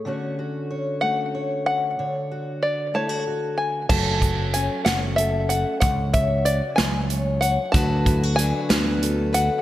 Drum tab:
CC |------|------|x-----|------|
HH |------|------|-xxxxx|xxxxxx|
SD |------|------|---o--|---o--|
BD |------|------|oo----|oo----|

CC |------|
HH |xxxxxx|
SD |---o--|
BD |oo----|